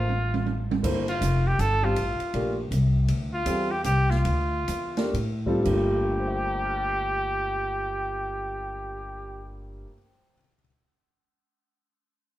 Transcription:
Already playing: A1 F4
0.09 high tom
0.34 high tom
0.46 high tom
0.71 high tom
0.83 G1 A#3 E4 A4 C5, kick, crash
1.08 F4, ride
1.21 F1, hi-hat pedal, ride
1.47 G4
1.59 G1 A4, hi-hat pedal, ride
1.83 G3 C4 F4 G4
1.96 A1, ride
2.20 muted upright bass stroke, ride
2.34 A#1 A3 D4 G4 A#4, ride
2.71 C2, hi-hat pedal, ride
3.08 D2, ride
3.34 F4
3.46 E2 G3 C4 F4 A4, hi-hat pedal, ride
3.71 G4
3.84 C2 G4, hi-hat pedal, ride
4.10 F4, snare
4.25 D2, ride
4.68 E2, hi-hat pedal, ride
4.97 A3 D4 G4 A#4, snare, ride
5.14 A2, ride
5.46 G3 C4 F4 A4, kick
5.60 G2 G3
5.65 G1 A#3 G4, kick, crash
5.69 A3 F4
6.20 C5
6.27 E5
6.35 G5
6.45 A#5
6.54 D6
6.65 F6
6.77 A6
6.89 C7

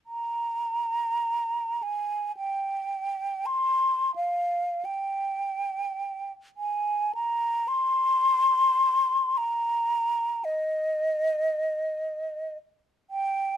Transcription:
0.06 A#5
1.83 G#5
2.37 G5
3.46 C6
4.16 F5
4.85 G5
6.57 G#5
7.15 A#5
7.68 C6
9.37 A#5
10.44 D#5
13.10 G5

